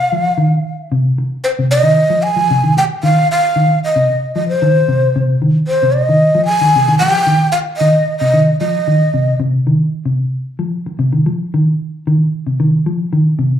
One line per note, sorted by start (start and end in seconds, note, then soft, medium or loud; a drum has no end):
0.00 0.88 F5 medium
0.12 0.33 F3 medium
0.38 0.58 D#3 medium
0.92 1.12 C3 medium
1.18 muted clean electric guitar stroke medium
1.44 1.50 C5 medium
1.59 1.79 C3 medium
1.71 2.24 D#5 loud
1.83 2.04 D#3 medium
2.10 2.31 F3 medium
2.23 2.76 G#5 loud
2.36 2.47 F3 medium
2.51 2.61 C3 loud
2.63 2.73 D#3 medium
2.77 2.84 G5 loud
2.77 muted clean electric guitar stroke medium
3.03 3.24 D#3 medium
3.03 3.28 F5 loud
3.31 3.79 F5 loud
3.56 3.76 D#3 medium
3.84 4.33 D#5 medium
3.96 4.06 C3 medium
4.35 4.56 F3 medium
4.35 4.47 D#5 medium
4.49 5.37 C5 loud
4.62 4.82 D#3 loud
4.88 5.09 C3 medium
5.16 5.36 C3 medium
5.42 5.62 D#3 medium
5.68 5.94 C5 medium
5.83 6.03 C3 medium
5.93 6.44 D#5 medium
6.09 6.29 D#3 medium
6.35 6.55 F3 medium
6.45 6.95 G#5 loud
6.61 6.71 D#3 medium
6.76 6.85 C3 medium
6.88 6.98 D#3 medium
6.99 7.22 F3 medium
6.99 7.49 G5 loud
7.27 7.47 D#3 medium
7.52 7.58 F5 loud
7.77 8.01 D#3 loud
7.77 8.16 D#5 loud
8.18 8.31 C3 medium
8.18 8.56 D#5 medium
8.34 8.54 D#3 medium
8.60 8.81 F3 medium
8.60 9.36 D#5 loud
8.88 9.08 D#3 medium
9.14 9.34 C3 medium
9.40 9.60 C3 loud
9.67 9.87 D#3 medium
10.05 10.27 C3 medium
10.59 10.80 F3 medium
10.86 muted clean electric guitar stroke medium
10.99 11.10 C3 medium
11.13 11.23 D#3 medium
11.26 11.47 F3 medium
11.54 11.74 D#3 medium
12.07 12.27 D#3 loud
12.47 12.57 C3 medium
12.60 12.80 D#3 medium
12.86 13.07 F3 medium
13.13 13.33 D#3 medium
13.39 13.59 C3 medium